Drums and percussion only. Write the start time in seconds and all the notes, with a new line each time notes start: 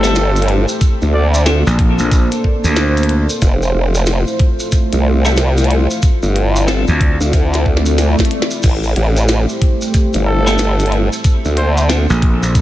0.04 maracas
0.15 snare, closed hi-hat, maracas
0.36 closed hi-hat, maracas
0.42 closed hi-hat
0.48 closed hi-hat
0.69 maracas
0.81 kick, closed hi-hat, maracas
1.02 maracas
1.13 cross-stick
1.34 closed hi-hat, maracas
1.46 snare, closed hi-hat, maracas
1.67 maracas
1.79 kick, closed hi-hat
1.99 maracas
2.12 kick, closed hi-hat, maracas
2.32 closed hi-hat, maracas
2.44 kick
2.64 maracas
2.76 snare, closed hi-hat, maracas
2.97 closed hi-hat, maracas
3.03 closed hi-hat
3.09 closed hi-hat
3.29 maracas
3.42 kick, closed hi-hat, maracas
3.62 maracas
3.75 cross-stick
3.95 closed hi-hat, maracas
4.06 snare, closed hi-hat, maracas
4.27 maracas
4.39 kick, closed hi-hat
4.60 maracas
4.72 kick, closed hi-hat, maracas
4.92 closed hi-hat, maracas
5.25 maracas
5.37 snare, closed hi-hat, maracas
5.57 closed hi-hat, maracas
5.64 closed hi-hat
5.71 closed hi-hat
5.91 maracas
6.02 kick, closed hi-hat, maracas
6.23 maracas
6.36 cross-stick, closed hi-hat
6.56 closed hi-hat, maracas
6.68 snare, closed hi-hat, maracas
6.87 maracas
7.01 kick, closed hi-hat
7.21 maracas
7.33 kick, snare, closed hi-hat, maracas
7.53 snare, closed hi-hat, maracas
7.66 kick
7.77 snare
7.86 closed hi-hat, maracas
7.98 snare, closed hi-hat, maracas
8.19 kick, snare, closed hi-hat, maracas
8.25 closed hi-hat
8.31 closed hi-hat
8.42 snare
8.51 maracas
8.63 kick, closed hi-hat, crash, maracas
8.83 maracas
8.96 cross-stick, closed hi-hat
9.17 closed hi-hat, maracas
9.28 snare, closed hi-hat, maracas
9.49 maracas
9.62 kick, closed hi-hat
9.82 maracas
9.94 kick, closed hi-hat, maracas
10.13 closed hi-hat, maracas
10.47 maracas
10.58 snare, closed hi-hat, maracas
10.80 closed hi-hat, maracas
10.86 closed hi-hat
10.92 closed hi-hat
11.13 maracas
11.24 kick, closed hi-hat, maracas
11.45 maracas
11.57 cross-stick, closed hi-hat
11.77 closed hi-hat, maracas
11.90 snare, closed hi-hat, maracas
12.10 maracas
12.22 kick, closed hi-hat
12.43 maracas
12.55 kick, closed hi-hat, maracas